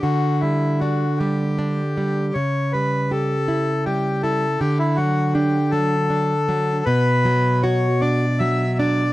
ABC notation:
X:1
M:6/8
L:1/16
Q:3/8=52
K:D
V:1 name="Bandoneon"
F2 E2 F2 G6 | c2 B2 A4 G2 A2 | G E F2 G2 A6 | [K:Bm] B4 c2 d2 e2 d2 |]
V:2 name="Nylon-string guitar" clef=bass
D,2 G,2 D2 G,2 D2 G,2 | C,2 G,2 G2 E2 G,2 E2 | D,2 F,2 D2 F,2 D2 F,2 | [K:Bm] B,,2 F,2 F2 D2 F,2 D2 |]